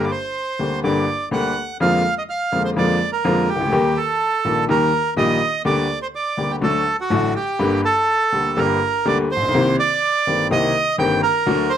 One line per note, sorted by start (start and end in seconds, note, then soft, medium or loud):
0.04 0.11 D5 soft
0.11 0.80 C5 medium
0.59 0.80 D2 soft
0.59 0.80 D3 soft
0.59 0.80 G3 soft
0.59 0.80 A#3 soft
0.59 0.80 G4 soft
0.84 1.04 G1 medium
0.84 1.04 G2 medium
0.84 1.04 D3 medium
0.84 1.04 G3 medium
0.84 1.04 A#3 medium
0.84 1.04 G4 medium
0.84 1.29 D5 medium
1.31 1.52 D2 medium
1.31 1.52 D3 medium
1.31 1.52 G3 medium
1.31 1.52 A#3 medium
1.31 1.52 G4 medium
1.31 1.77 F#5 medium
1.80 2.01 F2 medium
1.80 2.01 D3 medium
1.80 2.01 F3 medium
1.80 2.01 G#3 medium
1.80 2.01 A#3 medium
1.80 2.01 F4 medium
1.80 2.14 F5 medium
2.18 2.23 D#5 medium
2.30 2.63 F5 medium
2.52 2.73 F2 soft
2.52 2.73 D3 soft
2.52 2.73 F3 soft
2.52 2.73 G#3 soft
2.52 2.73 A#3 soft
2.52 2.73 F4 soft
2.65 2.70 C5 medium
2.76 2.97 F2 medium
2.76 2.97 D3 medium
2.76 2.97 F3 medium
2.76 2.97 G#3 medium
2.76 2.97 A#3 medium
2.76 2.97 F4 medium
2.76 3.11 D5 medium
3.13 3.50 A#4 medium
3.24 3.45 F2 medium
3.24 3.45 D3 medium
3.24 3.45 F3 medium
3.24 3.45 G#3 medium
3.24 3.45 A#3 medium
3.24 3.45 F4 medium
3.49 3.98 G4 medium
3.55 3.61 C2 soft
3.60 3.66 C#2 medium
3.67 3.73 D2 medium
3.72 3.93 D#2 medium
3.72 3.93 D#3 medium
3.72 3.92 G3 medium
3.72 3.93 A#3 medium
3.72 3.93 G4 medium
3.97 4.65 A4 medium
4.45 4.65 A#1 medium
4.45 4.65 A#2 soft
4.45 4.65 D#3 soft
4.45 4.65 G3 soft
4.45 4.65 A#3 soft
4.45 4.65 G4 soft
4.69 4.89 D#2 medium
4.69 4.89 D#3 medium
4.69 4.89 G3 medium
4.69 4.89 A#3 medium
4.69 4.89 G4 medium
4.69 5.14 A#4 medium
5.16 5.37 A#1 medium
5.16 5.37 A#2 medium
5.16 5.37 D#3 medium
5.16 5.37 G3 medium
5.16 5.37 A#3 medium
5.16 5.37 G4 medium
5.16 5.62 D#5 medium
5.65 5.85 D2 medium
5.65 5.85 D3 medium
5.65 5.85 G3 medium
5.65 5.86 A#3 medium
5.65 5.86 G4 medium
5.65 5.99 D5 medium
6.02 6.07 C5 medium
6.15 6.52 D5 medium
6.37 6.58 D2 soft
6.37 6.58 D3 soft
6.37 6.58 G3 soft
6.37 6.58 A#3 soft
6.37 6.58 G4 soft
6.51 6.56 G4 medium
6.61 6.82 D2 medium
6.61 6.82 D3 medium
6.61 6.82 F#3 medium
6.61 6.82 A3 medium
6.61 6.82 F#4 medium
6.61 6.97 A4 medium
7.01 7.34 F#4 medium
7.10 7.31 A1 medium
7.10 7.31 A2 medium
7.10 7.31 D3 medium
7.10 7.31 F#3 medium
7.10 7.31 A3 medium
7.10 7.31 F#4 medium
7.36 7.81 G4 medium
7.59 7.80 G1 medium
7.59 7.80 G2 medium
7.59 7.80 D3 medium
7.59 7.80 G3 medium
7.59 7.80 A#3 medium
7.59 7.80 G4 medium
7.85 8.60 A4 medium
8.32 8.53 D2 soft
8.32 8.53 D3 medium
8.32 8.53 G3 soft
8.32 8.53 A#3 soft
8.32 8.53 G4 soft
8.56 8.77 G1 medium
8.56 8.77 G2 medium
8.56 8.77 D3 medium
8.56 8.77 G3 medium
8.56 8.77 A#3 medium
8.56 8.77 G4 medium
8.56 9.08 A#4 medium
9.05 9.26 D2 medium
9.05 9.26 D3 medium
9.05 9.26 G3 medium
9.05 9.26 A#3 medium
9.05 9.26 G4 medium
9.05 9.18 D5 medium
9.31 9.76 C5 medium
9.36 9.42 A1 soft
9.42 9.48 A#1 medium
9.48 9.55 B1 medium
9.54 9.75 C2 medium
9.54 9.75 C3 medium
9.54 9.75 D#3 medium
9.54 9.75 A#3 medium
9.54 9.75 C4 medium
9.54 9.75 G4 medium
9.79 10.47 D5 medium
10.27 10.47 G1 soft
10.27 10.47 G2 medium
10.27 10.47 D#3 soft
10.27 10.47 A#3 soft
10.27 10.47 C4 soft
10.27 10.47 G4 soft
10.50 10.71 C2 medium
10.50 10.71 C3 medium
10.50 10.71 D#3 medium
10.50 10.71 A#3 medium
10.50 10.71 C4 medium
10.50 10.71 G4 medium
10.50 10.96 D#5 loud
10.98 11.19 G1 medium
10.98 11.19 G2 medium
10.98 11.19 D#3 medium
10.98 11.19 A#3 medium
10.98 11.19 C4 medium
10.98 11.19 G4 medium
10.98 11.21 G5 medium
11.23 11.72 A#4 medium
11.46 11.67 D2 medium
11.46 11.67 D3 medium
11.46 11.67 F#3 medium
11.46 11.67 A3 medium
11.46 11.67 F#4 medium
11.70 11.78 C5 medium